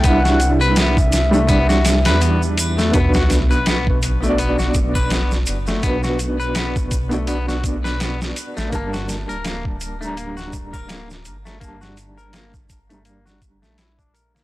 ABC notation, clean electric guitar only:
X:1
M:4/4
L:1/16
Q:"Swing 16ths" 1/4=83
K:G
V:1 name="Clean electric guitar"
B, F z B B, z2 A, B, F z B B, z2 A, | B, F z B B, z2 A, B, F z B B, z2 A, | B, F z B B, z2 A, B, F z B B, z2 A, | _B, F z _B B, z2 A, B, F z B B, z2 A, |
_B, F z _B B, z2 A, B, F z A, E D B B, |]